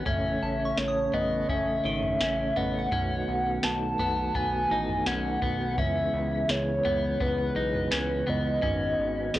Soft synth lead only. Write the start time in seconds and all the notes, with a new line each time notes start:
0.07 E5
0.78 C#5
1.14 D#5
1.49 E5
2.57 F#5
3.64 A5
4.36 G#5
5.07 F#5
5.79 E5
6.50 C#5
7.22 B4
8.29 D#5
9.36 G#4